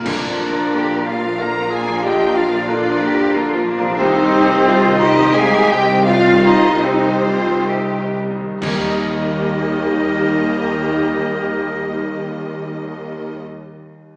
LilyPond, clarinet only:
\new Staff \with { instrumentName = "Clarinet" } { \time 3/4 \key ees \major \tempo 4 = 81 d'4. f'8 bes'8 aes'8 | g'8 f'8 d'4. r8 | c'4. ees'8 aes'8 g'8 | f'8 ees'8 c'4. r8 |
bes'2.~ | bes'2. | }